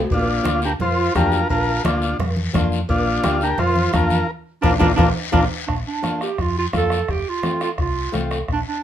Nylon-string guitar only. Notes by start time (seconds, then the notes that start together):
0.43 A#3 D4 F4
1.15 A#3 D4 G4
1.84 A#3 D4 F4
2.53 A#3 D4 F4
3.23 A#3 D4 G4
3.93 A#3 D4 F4
4.63 A#3 D4 F4
4.80 A#3 D4 F4
4.97 A#3 D4 F4
5.32 A#3 D4 F4
6.03 A#3 D4 F4
6.73 A#3 D4 F4
7.42 A3 C4 F4
8.12 A3 C4 F4